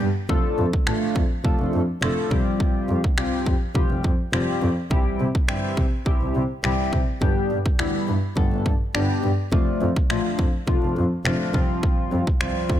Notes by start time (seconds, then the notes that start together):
Already playing: downlifter
0.00 G2
0.29 F1 A3 D4 F4 A4, kick
0.58 F2
0.73 kick
0.87 A1 A3 D4 F4 A4, finger snap
1.16 F2, kick
1.44 F1 A3 D4 F4 A4, kick
1.60 F1
1.73 F2
2.02 F1 A3 D4 F4 A4, finger snap
2.31 F1 G3 C4 F4 G4, kick
2.60 kick
2.89 F2
3.04 kick
3.17 C2 G3 C4 F4 G4, finger snap
3.46 F2, kick
3.75 F1 G3 C4 F4 G4, kick
3.91 F1
4.04 F2, kick
4.33 F1 G3 C4 F4 G4, finger snap
4.62 F2
4.90 C2 G3 C4 E4 G4, kick
5.20 C3
5.35 kick
5.48 G1 G3 C4 E4 G4, finger snap
5.77 C3, kick
6.06 C2 G3 C4 E4 G4, kick
6.21 C2
6.35 C3
6.64 C2 G3 C4 E4 G4, finger snap
6.93 C3, kick
7.21 G1 G3 B3 D4 G4, kick
7.50 G2
7.66 kick
7.79 D2 G3 B3 D4 E4, finger snap
8.08 G2
8.37 G1 G3 B3 D4 A4, kick
8.52 G1
8.66 G2, kick
8.94 G1 G3 B3 D4 G4, finger snap
9.24 G2
9.52 F1 F3 A3 D4 F4, kick
9.81 F2
9.96 kick
10.10 A1 F3 A3 D4 F4, finger snap
10.39 F2, kick
10.67 F1 F3 A3 D4 F4, kick
10.83 F1
10.97 F2
11.25 F1 F3 A3 D4 F4, finger snap
11.54 F1 F3 G3 C4 F4, kick
11.83 kick
12.12 F2
12.27 kick
12.41 C2 F3 G3 C4 F4, finger snap
12.70 F2, kick